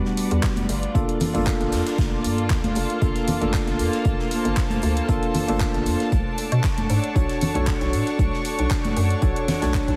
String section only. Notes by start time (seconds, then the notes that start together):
Already playing: G3 D4 F#5
0.69 F4
1.30 A#3
1.37 A5
6.12 D4
6.52 C#6